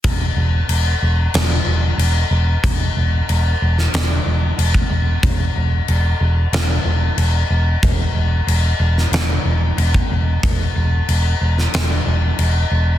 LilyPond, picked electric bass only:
\new Staff \with { instrumentName = "Picked electric bass" } { \clef bass \time 4/4 \key c \lydian \tempo 4 = 92 e,,8 e,,8 e,,8 e,,8 e,,8 e,,8 e,,8 e,,8 | e,,8 e,,8 e,,8 e,,8 e,,8 e,,8 e,,8 e,,8 | e,,8 e,,8 e,,8 e,,8 e,,8 e,,8 e,,8 e,,8 | e,,8 e,,8 e,,8 e,,8 e,,8 e,,8 e,,8 e,,8 |
e,,8 e,,8 e,,8 e,,8 e,,8 e,,8 e,,8 e,,8 | }